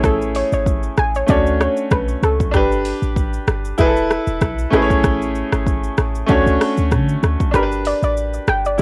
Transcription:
Already playing: A3 C#4 E4 G#4 C#5
0.04 A1 A4, kick, cross-stick, shaker
0.22 shaker
0.35 C#5, open hi-hat, shaker
0.52 G#1 C#5, shaker
0.66 kick, shaker
0.83 shaker
0.97 A1 G#5, cross-stick, shaker
1.15 C#5, shaker
1.26 D2 A3 C#4 D4 F#4 D5, kick, shaker
1.31 C#5
1.47 shaker
1.61 C#5, cross-stick, shaker
1.77 shaker
1.91 B1 B4, kick, cross-stick, shaker
2.08 shaker
2.23 C#2 A4, cross-stick, shaker
2.40 kick, shaker
2.51 G1 D4 G4, kick, cross-stick, shaker
2.56 B4
2.72 shaker
2.85 open hi-hat, shaker
3.02 A1, shaker
3.16 kick, shaker
3.33 shaker
3.47 G1, cross-stick, shaker
3.65 shaker
3.78 E1 E4 G#4 B4, kick, shaker
3.85 A4
3.96 shaker
4.11 cross-stick, shaker
4.27 E1, shaker
4.41 B1, kick, cross-stick, shaker
4.58 shaker
4.70 A1 A3 C#4 E4 G#4, cross-stick, shaker
4.75 B4
4.82 C#5
4.90 kick, shaker
5.04 A1, kick, cross-stick, shaker
5.22 shaker
5.35 shaker
5.52 G#1, cross-stick, shaker
5.66 kick, shaker
5.83 shaker
5.97 A1, cross-stick, shaker
6.15 shaker
6.26 D2 A3 C#4 D4 F#4, kick, shaker
6.31 C#5
6.46 C#2, shaker
6.61 cross-stick, open hi-hat, shaker
6.77 D2, shaker
6.91 D3, kick, cross-stick, shaker
7.09 shaker
7.23 D2, cross-stick, shaker
7.40 kick, shaker
7.51 G1 D4 G4 B4, cross-stick, shaker
7.56 A#4
7.63 B4
7.72 shaker
7.85 D5, open hi-hat, shaker
8.03 A1 D5, shaker
8.17 shaker
8.34 shaker
8.47 G1 G5, cross-stick, shaker
8.65 D5, shaker
8.78 E4, shaker

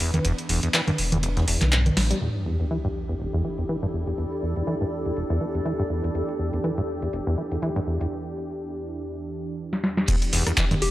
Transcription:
Already playing: E3 B3 D4 B4
0.00 E2, open hi-hat, ride
0.14 E2, closed hi-hat, low conga
0.25 E1 E2, closed hi-hat, ride
0.38 closed hi-hat, ride
0.49 E1 E2, open hi-hat, ride
0.63 E2, closed hi-hat, ride
0.74 E3, snare, clap, closed hi-hat, ride
0.87 G2, closed hi-hat, low conga
0.98 E1, open hi-hat, ride
1.12 E2, closed hi-hat, low conga
1.23 E1, closed hi-hat, ride
1.37 E2, snare, closed hi-hat
1.47 E1 E2, open hi-hat, ride
1.61 B1 E3, snare, clap, closed hi-hat, low conga
1.72 G2, clap, closed hi-hat
1.86 closed hi-hat, low conga
1.97 A1 B2, snare, open hi-hat, ride
2.10 G3, snare, closed hi-hat
2.21 E2 E3 D4 E4 G4, closed hi-hat, sub drop
2.35 A4, closed hi-hat
2.46 E2
2.60 E2, closed hi-hat
2.71 E3, closed hi-hat
2.84 G2, closed hi-hat
3.03 D5
3.09 E2, closed hi-hat
3.20 E1, closed hi-hat
3.33 E2
3.44 E3
3.58 E2, closed hi-hat
3.69 E3, closed hi-hat
3.83 G2, closed hi-hat
3.93 E2
4.07 E2, closed hi-hat
4.18 E2, closed hi-hat
4.32 closed hi-hat
4.43 E2
4.56 E2, closed hi-hat
4.67 E3, closed hi-hat
4.81 G2, closed hi-hat
5.06 E2, closed hi-hat
5.16 E1, closed hi-hat
5.30 E2, closed hi-hat
5.41 E3
5.55 E2, closed hi-hat
5.65 E3, closed hi-hat
5.79 G2, closed hi-hat
5.90 E2
6.04 E2, closed hi-hat
6.15 E2, closed hi-hat
6.29 closed hi-hat
6.39 E2
6.53 E2, closed hi-hat
6.64 E3, closed hi-hat
6.78 G2, closed hi-hat
7.02 E2, closed hi-hat
7.13 E1, closed hi-hat
7.27 E2
7.38 E3
7.51 E2, closed hi-hat
7.62 E3, closed hi-hat
7.76 G2, closed hi-hat
7.87 E2
8.01 E2, closed hi-hat
9.73 snare
9.84 snare
9.97 snare
10.08 E1 E2 E3 B3 D4 G4, kick, closed hi-hat, ride, crash, shaker
10.22 closed hi-hat, shaker
10.33 E1 E2, snare, open hi-hat, ride
10.47 E2, cross-stick, closed hi-hat, ride, shaker
10.57 E3, kick, snare, clap, closed hi-hat, ride, shaker
10.71 G2, closed hi-hat, low conga, shaker
10.82 E1 G4, open hi-hat, ride

